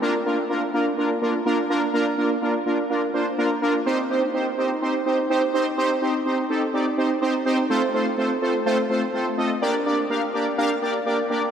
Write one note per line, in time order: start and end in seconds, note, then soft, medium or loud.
0.02 0.14 A#3 loud
0.02 0.14 D4 loud
0.02 0.14 F4 loud
0.02 0.14 A#4 loud
0.26 0.38 A#3 medium
0.26 0.38 D4 medium
0.26 0.38 F4 medium
0.26 0.38 A#4 loud
0.49 0.62 A#3 medium
0.49 0.62 D4 medium
0.49 0.62 F4 medium
0.49 0.62 A#4 loud
0.74 0.86 A#3 medium
0.74 0.86 D4 medium
0.74 0.86 F4 medium
0.74 0.86 A#4 medium
0.98 1.10 A#3 medium
0.98 1.10 D4 medium
0.98 1.10 F4 medium
0.98 1.10 A#4 medium
1.22 1.34 A#3 medium
1.22 1.34 D4 medium
1.22 1.34 F4 medium
1.22 1.34 A#4 loud
1.46 1.58 A#3 loud
1.46 1.58 D4 loud
1.46 1.58 F4 loud
1.46 1.58 A#4 loud
1.70 1.82 A#3 loud
1.70 1.82 D4 loud
1.70 1.82 F4 loud
1.70 1.82 A#4 loud
1.94 2.06 A#3 loud
1.94 2.06 D4 loud
1.94 2.06 F4 loud
1.94 2.06 A#4 loud
2.18 2.30 A#3 medium
2.18 2.30 D4 medium
2.18 2.30 F4 medium
2.18 2.30 A#4 loud
2.42 2.54 A#3 medium
2.42 2.54 D4 medium
2.42 2.54 F4 medium
2.42 2.54 A#4 medium
2.66 2.78 A#3 medium
2.66 2.78 D4 medium
2.66 2.78 F4 medium
2.66 2.78 A#4 medium
2.90 3.02 A#3 medium
2.90 3.02 D4 medium
2.90 3.02 F4 medium
2.90 3.02 A#4 loud
3.14 3.26 A#3 medium
3.14 3.26 D4 medium
3.14 3.26 F4 medium
3.14 3.26 C5 loud
3.38 3.50 A#3 loud
3.38 3.50 D4 loud
3.38 3.50 F4 loud
3.38 3.50 A#4 loud
3.62 3.74 A#3 loud
3.62 3.74 D4 loud
3.62 3.74 F4 loud
3.62 3.74 A#4 loud
3.86 3.98 C4 loud
3.86 3.98 D#4 loud
3.86 3.98 G4 loud
3.86 3.98 C5 loud
4.10 4.22 C4 medium
4.10 4.22 D#4 medium
4.10 4.22 G4 medium
4.10 4.22 C5 loud
4.34 4.46 C4 medium
4.34 4.46 D#4 medium
4.34 4.46 G4 medium
4.34 4.46 C5 medium
4.58 4.70 C4 medium
4.58 4.70 D#4 medium
4.58 4.70 G4 medium
4.58 4.70 C5 loud
4.82 4.94 C4 medium
4.82 4.94 D#4 medium
4.82 4.94 G4 medium
4.82 4.94 C5 loud
5.06 5.18 C4 medium
5.06 5.18 D#4 medium
5.06 5.18 G4 medium
5.06 5.18 C5 loud
5.30 5.42 C4 loud
5.30 5.42 D#4 loud
5.30 5.42 G4 loud
5.30 5.42 C5 loud
5.54 5.66 C4 loud
5.54 5.66 D#4 loud
5.54 5.66 G4 loud
5.54 5.66 C5 loud
5.78 5.90 C4 loud
5.78 5.90 D#4 loud
5.78 5.90 G4 loud
5.78 5.90 C5 loud
6.02 6.14 C4 medium
6.02 6.14 D#4 medium
6.02 6.14 G4 medium
6.02 6.14 C5 loud
6.26 6.38 C4 medium
6.26 6.38 D#4 medium
6.26 6.38 G4 medium
6.26 6.38 C5 medium
6.50 6.62 C4 medium
6.50 6.62 D#4 medium
6.50 6.62 G4 medium
6.50 6.62 A4 loud
6.74 6.86 C4 medium
6.74 6.86 D#4 medium
6.74 6.86 G4 medium
6.74 6.86 D5 loud
6.98 7.10 C4 medium
6.98 7.10 D#4 medium
6.98 7.10 G4 medium
6.98 7.10 C5 loud
7.22 7.34 C4 loud
7.22 7.34 D#4 loud
7.22 7.34 G4 loud
7.22 7.34 C5 loud
7.46 7.58 C4 loud
7.46 7.58 D#4 loud
7.46 7.58 G4 loud
7.46 7.58 C5 loud
7.70 7.82 A3 loud
7.70 7.82 C4 loud
7.70 7.82 F4 loud
7.70 7.82 A4 loud
7.70 7.82 C5 loud
7.94 8.06 A3 medium
7.94 8.06 C4 medium
7.94 8.06 F4 medium
7.94 8.06 A4 medium
7.94 8.06 C5 loud
8.18 8.30 A3 medium
8.18 8.30 C4 medium
8.18 8.30 F4 medium
8.18 8.30 A4 medium
8.18 8.30 C5 loud
8.42 8.54 A3 medium
8.42 8.54 C4 medium
8.42 8.54 F4 medium
8.42 8.54 A4 medium
8.42 8.54 C5 loud
8.66 8.78 A3 loud
8.66 8.78 C4 loud
8.66 8.78 F4 loud
8.66 8.78 A4 loud
8.66 8.78 C5 loud
8.90 9.02 A3 medium
8.90 9.02 C4 medium
8.90 9.02 F4 medium
8.90 9.02 A4 medium
8.90 9.02 C5 loud
9.14 9.26 A3 medium
9.14 9.26 C4 medium
9.14 9.26 F4 medium
9.14 9.26 A4 medium
9.14 9.26 C5 loud
9.38 9.50 A3 medium
9.38 9.50 C4 medium
9.38 9.50 F4 medium
9.38 9.50 A4 medium
9.38 9.50 D#5 loud
9.62 9.74 A#3 loud
9.62 9.74 D4 loud
9.62 9.74 G4 loud
9.62 9.74 A#4 loud
9.62 9.74 D5 loud
9.86 9.98 A#3 medium
9.86 9.98 D4 medium
9.86 9.98 G4 medium
9.86 9.98 A#4 medium
9.86 9.98 D5 loud
10.10 10.22 A#3 medium
10.10 10.22 D4 medium
10.10 10.22 G4 medium
10.10 10.22 A#4 medium
10.10 10.22 F5 loud
10.34 10.46 A#3 medium
10.34 10.46 D4 medium
10.34 10.46 G4 medium
10.34 10.46 A#4 medium
10.34 10.46 D5 loud
10.58 10.70 A#3 loud
10.58 10.70 D4 loud
10.58 10.70 G4 loud
10.58 10.70 A#4 loud
10.58 10.70 F5 loud
10.82 10.94 A#3 medium
10.82 10.94 D4 medium
10.82 10.94 G4 medium
10.82 10.94 A#4 medium
10.82 10.94 D5 loud
11.06 11.18 A#3 medium
11.06 11.18 D4 medium
11.06 11.18 G4 medium
11.06 11.18 A#4 medium
11.06 11.18 D5 medium
11.30 11.42 A#3 medium
11.30 11.42 D4 medium
11.30 11.42 G4 medium
11.30 11.42 A#4 medium
11.30 11.42 D5 medium